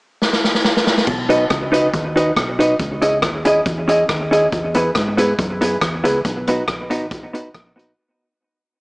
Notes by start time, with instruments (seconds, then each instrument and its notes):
0.22 snare
0.33 snare
0.44 snare
0.55 snare
0.65 snare
0.77 snare
0.87 snare
0.97 snare
1.07 fingered electric bass B1, kick, crash
1.29 hollow-body jazz guitar D#4 F#4 B4 D#5, closed hi-hat
1.50 fingered electric bass C#2, kick, cross-stick, closed hi-hat
1.72 hollow-body jazz guitar D#4 F#4 B4 D#5, closed hi-hat
1.93 fingered electric bass D#2, kick, closed hi-hat
2.16 hollow-body jazz guitar D#4 F#4 B4 D#5, closed hi-hat
2.36 fingered electric bass B1, muted hollow-body jazz guitar stroke, kick, cross-stick, closed hi-hat
2.59 hollow-body jazz guitar D#4 F#4 B4 D#5, closed hi-hat
2.79 fingered electric bass C#2, kick, closed hi-hat
3.02 hollow-body jazz guitar C#4 E4 G#4 D#5, closed hi-hat
3.22 fingered electric bass D#2, kick, cross-stick, closed hi-hat
3.45 hollow-body jazz guitar C#4 E4 G#4 D#5, closed hi-hat
3.66 fingered electric bass E2, kick, closed hi-hat
3.88 hollow-body jazz guitar C#4 E4 G#4 D#5, closed hi-hat
4.08 fingered electric bass D#2, muted hollow-body jazz guitar stroke, kick, cross-stick, closed hi-hat
4.31 hollow-body jazz guitar C#4 E4 G#4 D#5, closed hi-hat
4.52 fingered electric bass E2, kick, closed hi-hat
4.74 hollow-body jazz guitar B3 E4 G#4 B4, closed hi-hat
4.95 fingered electric bass G#2, kick, cross-stick, closed hi-hat
5.17 hollow-body jazz guitar B3 E4 G#4 B4, closed hi-hat
5.39 fingered electric bass F#2, kick, closed hi-hat
5.61 hollow-body jazz guitar B3 E4 G#4 B4, closed hi-hat
5.81 fingered electric bass E2, muted hollow-body jazz guitar stroke, kick, cross-stick, closed hi-hat
6.04 fingered electric bass C#2, hollow-body jazz guitar B3 E4 G#4 B4, closed hi-hat
6.25 fingered electric bass B1, kick, closed hi-hat
6.47 hollow-body jazz guitar B3 D#4 F#4 B4, closed hi-hat
6.68 fingered electric bass A#1, kick, cross-stick, closed hi-hat
6.90 fingered electric bass G#1, hollow-body jazz guitar B3 D#4 F#4 B4, closed hi-hat
7.11 fingered electric bass B1, kick, closed hi-hat
7.33 hollow-body jazz guitar B3 D#4 F#4 B4, closed hi-hat
7.54 fingered electric bass A#1, muted hollow-body jazz guitar stroke, kick, cross-stick, closed hi-hat
7.76 hollow-body jazz guitar B3 D#4 F#4 B4, closed hi-hat